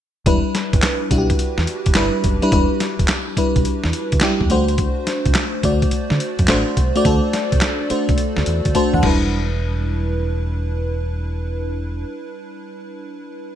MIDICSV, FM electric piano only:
0, 0, Header, 1, 2, 480
1, 0, Start_track
1, 0, Key_signature, 1, "minor"
1, 0, Tempo, 566038
1, 218, Time_signature, 4, 2, 24, 8
1, 11492, End_track
2, 0, Start_track
2, 0, Title_t, "FM electric piano"
2, 0, Program_c, 0, 5
2, 220, Note_on_c, 0, 55, 84
2, 224, Note_on_c, 0, 62, 70
2, 227, Note_on_c, 0, 64, 73
2, 230, Note_on_c, 0, 71, 87
2, 396, Control_c, 0, 64, 127
2, 696, Note_off_c, 0, 55, 0
2, 698, Note_off_c, 0, 62, 0
2, 700, Note_off_c, 0, 64, 0
2, 701, Note_off_c, 0, 71, 0
2, 938, Note_on_c, 0, 55, 73
2, 940, Note_on_c, 0, 62, 69
2, 946, Note_on_c, 0, 64, 68
2, 947, Note_on_c, 0, 66, 66
2, 1001, Note_on_c, 0, 67, 80
2, 1015, Note_off_c, 0, 66, 0
2, 1415, Note_off_c, 0, 55, 0
2, 1416, Note_off_c, 0, 62, 0
2, 1419, Note_off_c, 0, 64, 0
2, 1447, Note_off_c, 0, 67, 0
2, 1654, Note_on_c, 0, 55, 83
2, 1659, Note_on_c, 0, 62, 78
2, 1661, Note_on_c, 0, 64, 81
2, 1665, Note_on_c, 0, 71, 94
2, 1894, Note_off_c, 0, 55, 0
2, 1897, Note_off_c, 0, 62, 0
2, 1898, Note_off_c, 0, 64, 0
2, 1900, Note_off_c, 0, 71, 0
2, 2053, Note_on_c, 0, 55, 90
2, 2056, Note_on_c, 0, 62, 82
2, 2060, Note_on_c, 0, 64, 83
2, 2063, Note_on_c, 0, 71, 97
2, 2109, Note_off_c, 0, 55, 0
2, 2110, Note_off_c, 0, 62, 0
2, 2112, Note_off_c, 0, 64, 0
2, 2113, Note_off_c, 0, 71, 0
2, 2138, Note_on_c, 0, 55, 74
2, 2140, Note_on_c, 0, 62, 69
2, 2143, Note_on_c, 0, 64, 68
2, 2147, Note_on_c, 0, 71, 90
2, 2615, Note_off_c, 0, 55, 0
2, 2616, Note_off_c, 0, 62, 0
2, 2618, Note_off_c, 0, 64, 0
2, 2619, Note_off_c, 0, 71, 0
2, 2857, Note_on_c, 0, 55, 73
2, 2862, Note_on_c, 0, 62, 66
2, 2864, Note_on_c, 0, 64, 68
2, 2869, Note_on_c, 0, 71, 80
2, 3335, Note_off_c, 0, 55, 0
2, 3337, Note_off_c, 0, 62, 0
2, 3338, Note_off_c, 0, 64, 0
2, 3341, Note_off_c, 0, 71, 0
2, 3578, Note_on_c, 0, 55, 89
2, 3583, Note_on_c, 0, 62, 81
2, 3584, Note_on_c, 0, 64, 78
2, 3588, Note_on_c, 0, 67, 97
2, 3812, Note_off_c, 0, 62, 0
2, 3817, Note_off_c, 0, 55, 0
2, 3818, Note_on_c, 0, 57, 82
2, 3819, Note_off_c, 0, 64, 0
2, 3821, Note_off_c, 0, 67, 0
2, 3822, Note_on_c, 0, 62, 74
2, 3824, Note_on_c, 0, 66, 81
2, 3827, Note_on_c, 0, 72, 92
2, 3828, Control_c, 0, 64, 0
2, 3960, Control_c, 0, 64, 127
2, 4601, Note_off_c, 0, 57, 0
2, 4603, Note_off_c, 0, 62, 0
2, 4605, Note_off_c, 0, 66, 0
2, 4606, Note_off_c, 0, 72, 0
2, 4779, Note_on_c, 0, 57, 69
2, 4782, Note_on_c, 0, 62, 63
2, 4786, Note_on_c, 0, 66, 69
2, 4789, Note_on_c, 0, 74, 80
2, 5256, Note_off_c, 0, 57, 0
2, 5257, Note_off_c, 0, 62, 0
2, 5259, Note_off_c, 0, 66, 0
2, 5261, Note_off_c, 0, 74, 0
2, 5498, Note_on_c, 0, 57, 92
2, 5501, Note_on_c, 0, 62, 78
2, 5505, Note_on_c, 0, 66, 87
2, 5508, Note_on_c, 0, 72, 90
2, 5736, Note_off_c, 0, 57, 0
2, 5738, Note_off_c, 0, 62, 0
2, 5740, Note_off_c, 0, 66, 0
2, 5741, Note_off_c, 0, 72, 0
2, 5899, Note_on_c, 0, 57, 90
2, 5900, Note_on_c, 0, 62, 74
2, 5905, Note_on_c, 0, 66, 80
2, 5910, Note_on_c, 0, 74, 95
2, 5951, Note_off_c, 0, 57, 0
2, 5952, Note_off_c, 0, 62, 0
2, 5954, Note_off_c, 0, 66, 0
2, 5957, Note_off_c, 0, 74, 0
2, 5979, Note_on_c, 0, 57, 84
2, 5982, Note_on_c, 0, 62, 75
2, 5985, Note_on_c, 0, 66, 68
2, 5988, Note_on_c, 0, 69, 87
2, 6456, Note_off_c, 0, 57, 0
2, 6457, Note_off_c, 0, 62, 0
2, 6459, Note_off_c, 0, 66, 0
2, 6460, Note_off_c, 0, 69, 0
2, 6699, Note_on_c, 0, 57, 76
2, 6702, Note_on_c, 0, 62, 69
2, 6706, Note_on_c, 0, 66, 66
2, 6707, Note_on_c, 0, 72, 75
2, 7176, Note_off_c, 0, 57, 0
2, 7177, Note_off_c, 0, 62, 0
2, 7179, Note_off_c, 0, 66, 0
2, 7180, Note_off_c, 0, 72, 0
2, 7418, Note_on_c, 0, 57, 88
2, 7420, Note_on_c, 0, 62, 81
2, 7423, Note_on_c, 0, 81, 68
2, 7426, Note_on_c, 0, 66, 82
2, 7429, Note_on_c, 0, 72, 91
2, 7569, Note_off_c, 0, 81, 0
2, 7582, Note_on_c, 0, 78, 66
2, 7646, Note_on_c, 0, 55, 70
2, 7648, Note_off_c, 0, 62, 0
2, 7655, Note_off_c, 0, 78, 0
2, 7657, Note_off_c, 0, 57, 0
2, 7658, Note_on_c, 0, 62, 70
2, 7661, Note_off_c, 0, 66, 0
2, 7662, Note_off_c, 0, 72, 0
2, 7668, Control_c, 0, 64, 0
2, 7672, Note_on_c, 0, 64, 71
2, 7686, Note_on_c, 0, 71, 82
2, 7761, Control_c, 0, 64, 127
2, 7909, Control_c, 0, 64, 0
2, 8062, Control_c, 0, 64, 127
2, 10192, Note_off_c, 0, 55, 0
2, 10205, Note_off_c, 0, 62, 0
2, 10218, Note_off_c, 0, 64, 0
2, 10233, Note_off_c, 0, 71, 0
2, 11492, End_track
0, 0, End_of_file